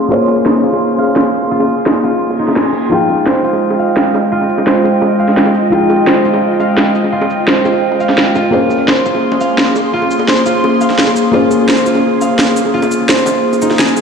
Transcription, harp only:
Already playing: D#4 F4 F5
0.11 F4
0.46 D#4
0.63 F4
0.98 F5
1.51 F4
1.86 D#4
2.04 F4
2.39 D#4
2.57 G#4
2.92 F4
3.27 C5
3.44 F4
3.79 F5
4.32 F4
4.67 C5
4.84 F4
5.19 F5
5.72 F4
6.07 C5
6.25 F4
6.60 F5
7.12 F4
7.47 C5
7.65 F4
8.00 F5
8.35 F4
8.53 F4
8.88 C5
9.05 F4
9.41 F5
9.93 F4
10.28 C5
10.46 F4
10.81 F5
11.34 F4
11.69 C5
11.86 F4
12.21 F5
12.74 F4
13.09 C5
13.26 F4
13.62 D#4
13.79 G#4

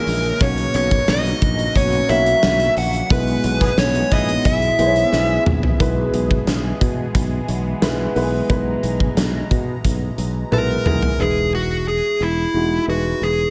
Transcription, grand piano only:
Already playing: G#3 E4 D#5 E5
0.41 B2 A#3 C#4 F#4 C#5
2.09 A#3 C#4 F#4 C#5
3.10 B2 G#3 B3 E4 B4
4.79 G#3 B3 E4 C5
4.86 C#5
5.80 B2 G#3 B3 E4 B4
7.81 G#3 B3 E4 B4
8.15 G#3 B3 E4 B4
8.49 B2 G#3 B3 E4 B4
10.51 G#3 B3 E4 B4
10.85 G#3 B3 E4 G#4
11.19 E3 G#3 D#4 E4 B4
12.54 G#3 D#4 E4 F#4
12.87 G#3 D#4 E4 B4

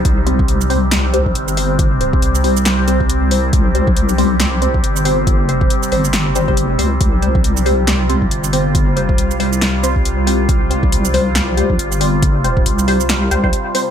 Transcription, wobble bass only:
0.05 C2
1.35 G1
2.22 C2
3.53 C2
4.83 G1
5.43 F#1
5.92 G1
6.52 F#1
6.79 C#2
7.01 C2
8.31 G1
8.91 F#1
9.18 C2
10.49 C2
11.79 G1
12.66 C2
13.31 C2

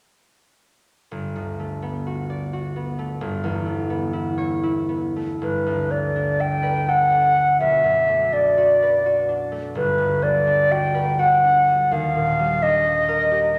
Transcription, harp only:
1.11 G1
1.36 D2
1.60 A3
1.82 B3
2.06 F#4
2.30 D5
2.53 F#4
2.76 B3
2.99 A3
3.21 G1
3.44 E2
3.66 A3
3.90 B3
4.13 E4
4.38 C#5
4.63 E4
4.89 B3
5.16 A3
5.41 G1
5.66 D2
5.91 A3
6.16 D4
6.40 A4
6.63 B4
6.88 A4
7.12 D4
7.36 A3
7.60 B1
7.84 F#2
8.08 A3
8.32 D4
8.58 F#4
8.82 B4
9.06 F#4
9.29 D4
9.52 A3
9.75 G1
9.98 D2
10.22 G3
10.47 D4
10.71 F#4
10.94 B4
11.19 F#4
11.44 D4
11.68 G3
11.91 D#2
12.15 A#2
12.39 G3
12.63 D4
12.86 G4
13.08 A#4
13.31 G4
13.54 D4

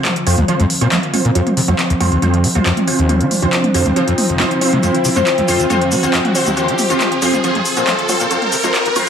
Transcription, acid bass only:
0.27 F2
0.38 D#2
0.48 F3
0.60 F2
0.81 A#2
0.92 F3
1.25 A#2
1.35 F2
1.57 C3
1.68 F2
1.90 D#2
2.00 F2
2.12 D#2
2.22 F2
2.44 D#3
2.55 D#2
2.66 F2
2.99 D#2
3.20 F3
3.42 D#2
3.75 F2
3.86 D#2
3.96 F3
4.08 F2
4.29 F1
4.40 D#2
4.73 C3
4.83 F2
5.05 C3
5.16 F2
5.38 D#2
5.48 F2
5.60 D#2
5.70 F2
5.92 D#3
6.03 D#2
6.14 F2
6.47 D#2
6.68 F3
6.90 D#2
7.22 F2
7.34 D#2
7.44 F3
7.55 F2
7.77 A#2
7.87 F3
8.20 A#2
8.31 F2
8.53 C3
8.64 F2
8.86 D#2
8.96 F2

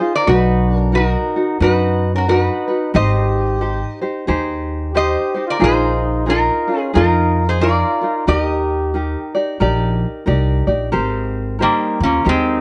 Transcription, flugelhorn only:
Already playing: G#4
0.15 F4
0.26 D#4
0.71 D4
0.94 D#4
1.61 D#4
2.14 C#4
2.28 D#4
2.95 G4
4.94 G4
5.47 F4
5.60 D#4
6.27 D#4
6.74 C#4
6.94 D#4
7.47 D#4
7.61 F4
8.26 F#4
8.37 G4
11.60 D#4
12.01 F4
12.25 D#4

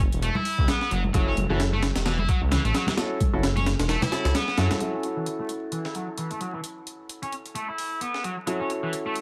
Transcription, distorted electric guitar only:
0.23 A3
0.36 E4
0.69 B3
0.91 F#3
1.14 F#3
1.27 C#4
1.50 E3
1.73 A3
2.06 E3
2.19 E4
2.29 F#3
2.52 E3
2.65 A3
2.75 F#3
2.88 E3
3.56 C#4
3.89 A3
4.02 E4
4.35 B3
4.58 F#3
4.81 F#3
4.94 C#4
5.17 E3
5.39 A3
5.72 E3
5.85 E4
5.95 F#3
6.18 E3
6.31 A3
6.41 F#3
6.54 E3
7.23 C#4
7.55 A3
7.68 E4
8.01 B3
8.24 F#3
8.47 F#3
8.60 C#4
8.83 E3
9.06 A3

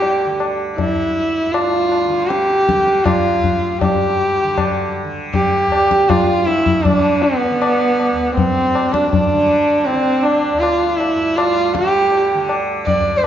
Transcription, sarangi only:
Already playing: G4
0.77 E4
1.52 F4
2.27 G4
3.04 F4
3.81 G4
5.34 G4
6.09 F4
6.46 E4
6.84 D4
7.22 B3
8.35 C4
8.93 D4
9.11 D4
9.85 C4
10.23 D4
10.59 F4
10.97 E4
11.36 F4
11.74 G4
12.86 D5
13.17 C5
13.23 B4

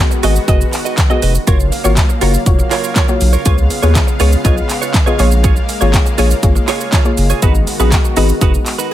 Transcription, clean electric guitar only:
0.11 muted clean electric guitar stroke
0.23 F#4 B4 D#5
0.36 muted clean electric guitar stroke
0.48 F#4 B4 D#5
0.60 muted clean electric guitar stroke
0.73 muted clean electric guitar stroke
0.85 F#4 B4 D#5
0.98 muted clean electric guitar stroke
1.10 F#4 B4 D#5
1.22 F#4 B4 D#5
1.35 muted clean electric guitar stroke
1.47 F4 A#4 C#5
1.60 muted clean electric guitar stroke
1.72 muted clean electric guitar stroke
1.84 F4 A#4 C#5
1.97 muted clean electric guitar stroke
2.09 muted clean electric guitar stroke
2.21 F4 A#4 C#5
2.34 muted clean electric guitar stroke
2.46 muted clean electric guitar stroke
2.59 muted clean electric guitar stroke
2.71 F4 A#4 C#5
2.83 F4 A#4 C#5
2.96 F4 A#4 C#5
3.08 muted clean electric guitar stroke
3.21 muted clean electric guitar stroke
3.33 F4 A#4 C#5
3.45 F4 B4 C#5
3.58 muted clean electric guitar stroke
3.70 muted clean electric guitar stroke
3.82 F4 B4 C#5
3.95 muted clean electric guitar stroke
4.07 muted clean electric guitar stroke
4.20 F4 B4 C#5
4.32 muted clean electric guitar stroke
4.44 F4 B4 C#5
4.57 muted clean electric guitar stroke
4.69 muted clean electric guitar stroke
4.81 F4 B4 C#5
4.94 muted clean electric guitar stroke
5.06 F4 B4 C#5
5.18 F4 G#4 C#5
5.31 muted clean electric guitar stroke
5.43 F4 G#4 C#5
5.56 muted clean electric guitar stroke
5.68 muted clean electric guitar stroke
5.81 F4 G#4 C#5
5.93 muted clean electric guitar stroke
6.06 muted clean electric guitar stroke
6.18 F4 G#4 C#5
6.31 muted clean electric guitar stroke
6.43 muted clean electric guitar stroke
6.55 muted clean electric guitar stroke
6.68 F4 G#4 C#5
6.80 F4 G#4 C#5
6.93 F4 G#4 C#5
7.05 muted clean electric guitar stroke
7.17 muted clean electric guitar stroke
7.30 F4 G#4 C#5
7.42 D#4 F#4 B4
7.55 muted clean electric guitar stroke
7.67 muted clean electric guitar stroke
7.80 D#4 F#4 B4
7.92 muted clean electric guitar stroke
8.04 muted clean electric guitar stroke
8.17 D#4 F#4 B4
8.29 muted clean electric guitar stroke
8.41 D#4 F#4 B4
8.54 muted clean electric guitar stroke
8.66 muted clean electric guitar stroke
8.78 D#4 F#4 B4

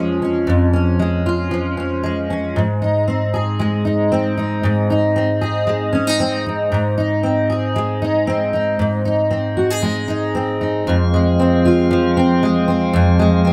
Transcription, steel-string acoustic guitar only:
Already playing: F2 F3 G#3 C#4 F4
0.22 C#4
0.47 F2
0.73 C#4
0.99 G#3
1.26 F4
1.51 F3
1.77 C#4
2.03 G#3
2.30 C#4
2.56 G#2
2.82 D#4
3.08 C4
3.34 G#4
3.59 G#3
3.85 D#4
4.12 C4
4.37 D#4
4.63 G#2
4.90 D#4
5.16 C4
5.41 G#4
5.67 G#3
5.93 C#4
6.07 D#4
6.20 C4
6.46 D#4
6.72 G#2
6.98 D#4
7.23 C4
7.50 G#4
7.76 G#3
8.02 D#4
8.27 C4
8.53 D#4
8.79 G#2
9.05 D#4
9.31 C4
9.57 F#4
9.70 G#4
9.82 G#3
10.08 D#4
10.35 C4
10.61 D#4
10.87 F2
11.14 G#3
11.39 C4
11.65 F4
11.91 F3
12.17 C4
12.43 G#3
12.68 C4
12.93 F2
13.19 G#3
13.45 C4

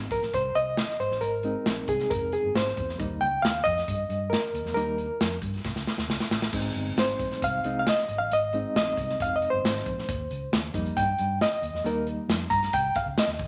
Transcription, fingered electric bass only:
0.11 A#1
0.33 C2
0.55 C2
1.00 G#1
1.11 A1
1.21 G#1
1.67 A#1
1.88 C2
2.11 F1
2.43 G1
2.54 G#1
2.77 E2
2.99 D#2
3.21 C#2
3.43 D#2
3.65 F2
3.88 G2
4.09 G2
4.54 D#2
4.65 E2
4.76 D#2
5.21 F2
5.42 G2
5.64 C2
5.76 C#2
5.98 D#2
6.08 C#2
6.30 A1
6.52 G#1
6.75 G1
6.96 G#1
7.19 A#1
7.42 C2
7.64 C2
8.08 G#1
8.20 A1
8.31 G#1
8.75 A#1
8.97 C2
9.20 F1
9.53 G1
9.64 G#1
9.86 A#1
10.09 D#2
10.30 C#2
10.52 D#2
10.74 F2
10.97 G2
11.19 G2
11.62 D#2
11.73 E2
11.84 D#2
12.28 F2
12.51 G2
12.73 C2
13.06 C#2
13.17 muted fingered electric bass stroke
13.27 D#2
13.39 D#3

